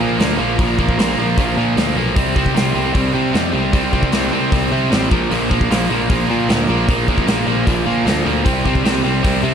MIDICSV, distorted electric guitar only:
0, 0, Header, 1, 2, 480
1, 0, Start_track
1, 0, Tempo, 393701
1, 713, Time_signature, 4, 2, 24, 8
1, 11632, End_track
2, 0, Start_track
2, 0, Title_t, "Distorted electric guitar"
2, 0, Program_c, 0, 30
2, 0, Note_on_c, 0, 46, 76
2, 0, Note_on_c, 0, 53, 86
2, 6, Note_on_c, 0, 58, 85
2, 216, Note_off_c, 0, 46, 0
2, 220, Note_off_c, 0, 53, 0
2, 231, Note_on_c, 0, 46, 92
2, 232, Note_off_c, 0, 58, 0
2, 234, Note_on_c, 0, 53, 111
2, 246, Note_on_c, 0, 58, 114
2, 456, Note_off_c, 0, 46, 0
2, 461, Note_off_c, 0, 53, 0
2, 471, Note_on_c, 0, 46, 89
2, 474, Note_off_c, 0, 58, 0
2, 475, Note_on_c, 0, 53, 99
2, 488, Note_on_c, 0, 58, 102
2, 688, Note_off_c, 0, 46, 0
2, 701, Note_off_c, 0, 53, 0
2, 702, Note_on_c, 0, 46, 99
2, 705, Note_off_c, 0, 58, 0
2, 716, Note_on_c, 0, 53, 112
2, 719, Note_on_c, 0, 58, 111
2, 941, Note_off_c, 0, 46, 0
2, 950, Note_off_c, 0, 53, 0
2, 954, Note_off_c, 0, 58, 0
2, 956, Note_on_c, 0, 46, 80
2, 964, Note_on_c, 0, 53, 86
2, 969, Note_on_c, 0, 58, 95
2, 1180, Note_off_c, 0, 46, 0
2, 1185, Note_off_c, 0, 53, 0
2, 1192, Note_off_c, 0, 58, 0
2, 1194, Note_on_c, 0, 46, 98
2, 1199, Note_on_c, 0, 53, 91
2, 1207, Note_on_c, 0, 58, 91
2, 1420, Note_off_c, 0, 46, 0
2, 1432, Note_off_c, 0, 53, 0
2, 1434, Note_off_c, 0, 58, 0
2, 1435, Note_on_c, 0, 46, 75
2, 1446, Note_on_c, 0, 53, 80
2, 1449, Note_on_c, 0, 58, 82
2, 1661, Note_off_c, 0, 46, 0
2, 1667, Note_off_c, 0, 53, 0
2, 1674, Note_off_c, 0, 58, 0
2, 1676, Note_on_c, 0, 46, 100
2, 1681, Note_on_c, 0, 53, 98
2, 1688, Note_on_c, 0, 58, 105
2, 1893, Note_off_c, 0, 46, 0
2, 1899, Note_off_c, 0, 53, 0
2, 1899, Note_off_c, 0, 58, 0
2, 1908, Note_on_c, 0, 46, 78
2, 1914, Note_on_c, 0, 53, 82
2, 1914, Note_on_c, 0, 58, 83
2, 2129, Note_off_c, 0, 46, 0
2, 2133, Note_off_c, 0, 53, 0
2, 2144, Note_on_c, 0, 46, 102
2, 2145, Note_off_c, 0, 58, 0
2, 2148, Note_on_c, 0, 53, 101
2, 2160, Note_on_c, 0, 58, 106
2, 2374, Note_off_c, 0, 46, 0
2, 2380, Note_off_c, 0, 53, 0
2, 2388, Note_off_c, 0, 58, 0
2, 2389, Note_on_c, 0, 46, 104
2, 2394, Note_on_c, 0, 53, 94
2, 2402, Note_on_c, 0, 58, 106
2, 2616, Note_off_c, 0, 46, 0
2, 2621, Note_off_c, 0, 53, 0
2, 2621, Note_on_c, 0, 48, 90
2, 2625, Note_off_c, 0, 58, 0
2, 2635, Note_on_c, 0, 55, 97
2, 2637, Note_on_c, 0, 60, 86
2, 2867, Note_off_c, 0, 48, 0
2, 2872, Note_on_c, 0, 48, 90
2, 2873, Note_off_c, 0, 55, 0
2, 2878, Note_on_c, 0, 55, 88
2, 2884, Note_off_c, 0, 60, 0
2, 2889, Note_on_c, 0, 60, 98
2, 3102, Note_off_c, 0, 48, 0
2, 3107, Note_on_c, 0, 48, 101
2, 3111, Note_off_c, 0, 55, 0
2, 3114, Note_off_c, 0, 60, 0
2, 3116, Note_on_c, 0, 55, 90
2, 3119, Note_on_c, 0, 60, 99
2, 3337, Note_off_c, 0, 48, 0
2, 3341, Note_off_c, 0, 55, 0
2, 3348, Note_off_c, 0, 60, 0
2, 3352, Note_on_c, 0, 48, 84
2, 3356, Note_on_c, 0, 55, 79
2, 3363, Note_on_c, 0, 60, 82
2, 3563, Note_off_c, 0, 48, 0
2, 3571, Note_off_c, 0, 55, 0
2, 3578, Note_off_c, 0, 60, 0
2, 3578, Note_on_c, 0, 48, 99
2, 3586, Note_on_c, 0, 55, 97
2, 3593, Note_on_c, 0, 60, 108
2, 3800, Note_off_c, 0, 48, 0
2, 3806, Note_off_c, 0, 55, 0
2, 3814, Note_on_c, 0, 48, 80
2, 3816, Note_off_c, 0, 60, 0
2, 3821, Note_on_c, 0, 55, 83
2, 3830, Note_on_c, 0, 60, 83
2, 4041, Note_off_c, 0, 48, 0
2, 4051, Note_off_c, 0, 55, 0
2, 4056, Note_on_c, 0, 48, 100
2, 4057, Note_off_c, 0, 60, 0
2, 4066, Note_on_c, 0, 55, 97
2, 4071, Note_on_c, 0, 60, 109
2, 4282, Note_off_c, 0, 48, 0
2, 4291, Note_off_c, 0, 55, 0
2, 4296, Note_off_c, 0, 60, 0
2, 4297, Note_on_c, 0, 48, 98
2, 4306, Note_on_c, 0, 55, 110
2, 4311, Note_on_c, 0, 60, 92
2, 4524, Note_off_c, 0, 48, 0
2, 4530, Note_off_c, 0, 55, 0
2, 4532, Note_off_c, 0, 60, 0
2, 4538, Note_on_c, 0, 48, 91
2, 4544, Note_on_c, 0, 55, 102
2, 4546, Note_on_c, 0, 60, 98
2, 4767, Note_off_c, 0, 48, 0
2, 4773, Note_off_c, 0, 55, 0
2, 4777, Note_off_c, 0, 60, 0
2, 4782, Note_on_c, 0, 48, 90
2, 4788, Note_on_c, 0, 55, 88
2, 4792, Note_on_c, 0, 60, 94
2, 5008, Note_off_c, 0, 48, 0
2, 5014, Note_off_c, 0, 55, 0
2, 5017, Note_off_c, 0, 60, 0
2, 5023, Note_on_c, 0, 48, 92
2, 5028, Note_on_c, 0, 55, 98
2, 5031, Note_on_c, 0, 60, 101
2, 5249, Note_off_c, 0, 48, 0
2, 5258, Note_off_c, 0, 55, 0
2, 5264, Note_on_c, 0, 48, 77
2, 5265, Note_off_c, 0, 60, 0
2, 5273, Note_on_c, 0, 55, 78
2, 5279, Note_on_c, 0, 60, 103
2, 5488, Note_off_c, 0, 48, 0
2, 5498, Note_off_c, 0, 55, 0
2, 5503, Note_off_c, 0, 60, 0
2, 5503, Note_on_c, 0, 48, 87
2, 5513, Note_on_c, 0, 55, 96
2, 5518, Note_on_c, 0, 60, 103
2, 5727, Note_off_c, 0, 48, 0
2, 5732, Note_off_c, 0, 55, 0
2, 5741, Note_on_c, 0, 48, 80
2, 5743, Note_off_c, 0, 60, 0
2, 5747, Note_on_c, 0, 55, 90
2, 5758, Note_on_c, 0, 60, 92
2, 5961, Note_off_c, 0, 48, 0
2, 5971, Note_off_c, 0, 55, 0
2, 5975, Note_off_c, 0, 60, 0
2, 5975, Note_on_c, 0, 48, 100
2, 5985, Note_on_c, 0, 55, 95
2, 5989, Note_on_c, 0, 60, 104
2, 6211, Note_off_c, 0, 48, 0
2, 6216, Note_off_c, 0, 55, 0
2, 6218, Note_off_c, 0, 60, 0
2, 6220, Note_on_c, 0, 46, 108
2, 6227, Note_on_c, 0, 53, 114
2, 6235, Note_on_c, 0, 58, 123
2, 6460, Note_off_c, 0, 46, 0
2, 6464, Note_off_c, 0, 53, 0
2, 6465, Note_on_c, 0, 46, 92
2, 6469, Note_on_c, 0, 53, 99
2, 6471, Note_off_c, 0, 58, 0
2, 6476, Note_on_c, 0, 58, 97
2, 6698, Note_off_c, 0, 46, 0
2, 6703, Note_on_c, 0, 46, 80
2, 6707, Note_off_c, 0, 53, 0
2, 6712, Note_on_c, 0, 53, 90
2, 6714, Note_off_c, 0, 58, 0
2, 6719, Note_on_c, 0, 58, 101
2, 6945, Note_off_c, 0, 46, 0
2, 6949, Note_on_c, 0, 46, 79
2, 6954, Note_off_c, 0, 53, 0
2, 6958, Note_on_c, 0, 53, 107
2, 6959, Note_off_c, 0, 58, 0
2, 6964, Note_on_c, 0, 58, 107
2, 7185, Note_off_c, 0, 46, 0
2, 7190, Note_on_c, 0, 46, 81
2, 7193, Note_off_c, 0, 53, 0
2, 7198, Note_off_c, 0, 58, 0
2, 7198, Note_on_c, 0, 53, 86
2, 7203, Note_on_c, 0, 58, 89
2, 7410, Note_off_c, 0, 46, 0
2, 7414, Note_off_c, 0, 53, 0
2, 7422, Note_off_c, 0, 58, 0
2, 7425, Note_on_c, 0, 46, 90
2, 7429, Note_on_c, 0, 53, 100
2, 7437, Note_on_c, 0, 58, 116
2, 7645, Note_off_c, 0, 46, 0
2, 7658, Note_off_c, 0, 53, 0
2, 7659, Note_on_c, 0, 46, 85
2, 7662, Note_off_c, 0, 58, 0
2, 7672, Note_on_c, 0, 53, 77
2, 7676, Note_on_c, 0, 58, 85
2, 7895, Note_off_c, 0, 46, 0
2, 7899, Note_off_c, 0, 53, 0
2, 7910, Note_on_c, 0, 46, 98
2, 7911, Note_off_c, 0, 58, 0
2, 7913, Note_on_c, 0, 53, 99
2, 7926, Note_on_c, 0, 58, 111
2, 8138, Note_off_c, 0, 46, 0
2, 8142, Note_off_c, 0, 53, 0
2, 8144, Note_off_c, 0, 58, 0
2, 8152, Note_on_c, 0, 46, 92
2, 8157, Note_on_c, 0, 53, 92
2, 8158, Note_on_c, 0, 58, 110
2, 8369, Note_off_c, 0, 46, 0
2, 8380, Note_off_c, 0, 58, 0
2, 8381, Note_off_c, 0, 53, 0
2, 8384, Note_on_c, 0, 46, 94
2, 8394, Note_on_c, 0, 58, 106
2, 8395, Note_on_c, 0, 53, 92
2, 8612, Note_off_c, 0, 46, 0
2, 8617, Note_off_c, 0, 53, 0
2, 8626, Note_off_c, 0, 58, 0
2, 8627, Note_on_c, 0, 46, 88
2, 8631, Note_on_c, 0, 53, 99
2, 8641, Note_on_c, 0, 58, 84
2, 8849, Note_off_c, 0, 46, 0
2, 8857, Note_off_c, 0, 53, 0
2, 8862, Note_off_c, 0, 58, 0
2, 8864, Note_on_c, 0, 46, 85
2, 8872, Note_on_c, 0, 53, 88
2, 8877, Note_on_c, 0, 58, 101
2, 9084, Note_off_c, 0, 46, 0
2, 9090, Note_off_c, 0, 53, 0
2, 9096, Note_off_c, 0, 58, 0
2, 9099, Note_on_c, 0, 46, 73
2, 9104, Note_on_c, 0, 53, 84
2, 9111, Note_on_c, 0, 58, 101
2, 9328, Note_off_c, 0, 46, 0
2, 9328, Note_off_c, 0, 53, 0
2, 9336, Note_off_c, 0, 58, 0
2, 9343, Note_on_c, 0, 46, 103
2, 9343, Note_on_c, 0, 53, 110
2, 9351, Note_on_c, 0, 58, 111
2, 9562, Note_off_c, 0, 46, 0
2, 9568, Note_off_c, 0, 53, 0
2, 9573, Note_off_c, 0, 58, 0
2, 9577, Note_on_c, 0, 46, 68
2, 9582, Note_on_c, 0, 53, 89
2, 9588, Note_on_c, 0, 58, 85
2, 9807, Note_off_c, 0, 46, 0
2, 9811, Note_off_c, 0, 53, 0
2, 9820, Note_off_c, 0, 58, 0
2, 9822, Note_on_c, 0, 46, 92
2, 9825, Note_on_c, 0, 53, 104
2, 9835, Note_on_c, 0, 58, 105
2, 10044, Note_off_c, 0, 46, 0
2, 10052, Note_off_c, 0, 53, 0
2, 10059, Note_on_c, 0, 46, 98
2, 10064, Note_off_c, 0, 58, 0
2, 10067, Note_on_c, 0, 53, 105
2, 10078, Note_on_c, 0, 58, 108
2, 10288, Note_off_c, 0, 46, 0
2, 10293, Note_on_c, 0, 48, 91
2, 10295, Note_off_c, 0, 53, 0
2, 10300, Note_off_c, 0, 58, 0
2, 10300, Note_on_c, 0, 55, 105
2, 10305, Note_on_c, 0, 60, 98
2, 10538, Note_off_c, 0, 48, 0
2, 10540, Note_off_c, 0, 55, 0
2, 10543, Note_on_c, 0, 48, 89
2, 10545, Note_on_c, 0, 55, 92
2, 10548, Note_off_c, 0, 60, 0
2, 10553, Note_on_c, 0, 60, 106
2, 10764, Note_off_c, 0, 48, 0
2, 10769, Note_on_c, 0, 48, 82
2, 10773, Note_off_c, 0, 55, 0
2, 10778, Note_on_c, 0, 55, 91
2, 10780, Note_off_c, 0, 60, 0
2, 10784, Note_on_c, 0, 60, 97
2, 10995, Note_off_c, 0, 48, 0
2, 11002, Note_off_c, 0, 55, 0
2, 11004, Note_off_c, 0, 60, 0
2, 11009, Note_on_c, 0, 48, 86
2, 11017, Note_on_c, 0, 55, 96
2, 11019, Note_on_c, 0, 60, 78
2, 11235, Note_off_c, 0, 48, 0
2, 11239, Note_off_c, 0, 55, 0
2, 11249, Note_on_c, 0, 48, 101
2, 11251, Note_off_c, 0, 60, 0
2, 11254, Note_on_c, 0, 55, 113
2, 11266, Note_on_c, 0, 60, 112
2, 11478, Note_off_c, 0, 48, 0
2, 11487, Note_off_c, 0, 55, 0
2, 11492, Note_off_c, 0, 60, 0
2, 11492, Note_on_c, 0, 48, 83
2, 11502, Note_on_c, 0, 55, 86
2, 11506, Note_on_c, 0, 60, 92
2, 11632, Note_off_c, 0, 48, 0
2, 11632, Note_off_c, 0, 55, 0
2, 11632, Note_off_c, 0, 60, 0
2, 11632, End_track
0, 0, End_of_file